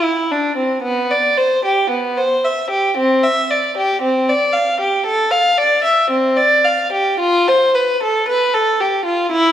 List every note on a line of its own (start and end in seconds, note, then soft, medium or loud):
0.03 0.30 E4 medium
0.31 0.57 D4 medium
0.56 0.82 C4 medium
0.82 1.08 B3 medium
1.11 1.37 D5 medium
1.37 1.63 C5 medium
1.65 1.90 G4 medium
1.90 2.16 B3 medium
2.17 2.43 C5 medium
2.45 2.70 E5 medium
2.70 2.95 G4 medium
2.97 3.21 C4 medium
3.23 3.48 E5 medium
3.50 3.75 D5 medium
3.77 4.01 G4 medium
4.01 4.26 C4 medium
4.29 4.53 D5 medium
4.53 4.78 F5 medium
4.80 5.04 G4 medium
5.06 5.31 A4 medium
5.31 5.57 F5 medium
5.58 5.84 D5 medium
5.84 6.09 E5 medium
6.10 6.36 C4 medium
6.37 6.64 D5 medium
6.64 6.91 F5 medium
6.92 7.19 G4 medium
7.20 7.47 F4 medium
7.48 7.75 C5 medium
7.74 8.01 B4 medium
8.03 8.27 A4 medium
8.28 8.53 B4 medium
8.54 8.79 A4 medium
8.80 9.06 G4 medium
9.05 9.30 F4 medium
9.31 9.52 E4 medium